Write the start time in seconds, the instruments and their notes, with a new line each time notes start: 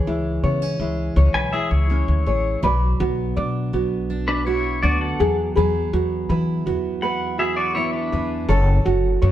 Already playing: steel-string acoustic guitar E3 C#4 G#4, ukulele G#4 C#5
0.07 upright bass C#2, steel-string acoustic guitar G#3, ukulele E4
0.43 upright bass C#3, steel-string acoustic guitar B3, ukulele C#5
0.62 steel-string acoustic guitar C#4
0.80 upright bass C#2, steel-string acoustic guitar G#3, ukulele E4
1.16 upright bass C#2, steel-string acoustic guitar C#4, ukulele C#5
1.34 upright bass B1, pedal steel guitar B4 G#5
1.53 ukulele E4, pedal steel guitar G#4 E5, steel-string acoustic guitar G#4
1.71 upright bass C#2, pedal steel guitar E4 C#5
1.90 steel-string acoustic guitar G#3, ukulele C#4
2.08 upright bass D2
2.26 upright bass A1, steel-string acoustic guitar G#4, ukulele C#5
2.63 upright bass B1, steel-string acoustic guitar F#3 F#4, ukulele B4 D5
3.00 upright bass B1, steel-string acoustic guitar B3, ukulele F#4
3.37 upright bass B2, steel-string acoustic guitar D4, ukulele D5
3.73 upright bass B1, steel-string acoustic guitar B3, ukulele F#4
4.10 steel-string acoustic guitar D4
4.28 pedal steel guitar D4 B4
4.46 pedal steel guitar E4 C#5, steel-string acoustic guitar F#4, ukulele F#4
4.83 upright bass D2, steel-string acoustic guitar B3, ukulele D4, pedal steel guitar F#4 D5
5.01 pedal steel guitar A4 F#5
5.20 upright bass E2, steel-string acoustic guitar F#3, ukulele G#4
5.55 upright bass E2, steel-string acoustic guitar F#3 G#4, ukulele G#4 B4
5.93 upright bass E2, steel-string acoustic guitar B3, ukulele F#4
6.29 upright bass E3, steel-string acoustic guitar E4, ukulele B4
6.66 upright bass E2, steel-string acoustic guitar B3, ukulele F#4
7.02 steel-string acoustic guitar E4, ukulele B4, pedal steel guitar F#5
7.38 ukulele F#4, pedal steel guitar G#4 E5, steel-string acoustic guitar G#4
7.57 pedal steel guitar F#4 D5
7.75 steel-string acoustic guitar B3, pedal steel guitar E4 C#5, ukulele E4
7.93 pedal steel guitar D4 B4
8.12 upright bass E2, steel-string acoustic guitar G#4, ukulele B4
8.49 upright bass F#1, steel-string acoustic guitar C#4 A4, ukulele A4 C#5
8.85 upright bass F#1, steel-string acoustic guitar C#4, ukulele F#4
9.22 upright bass F#2, steel-string acoustic guitar E4, ukulele C#5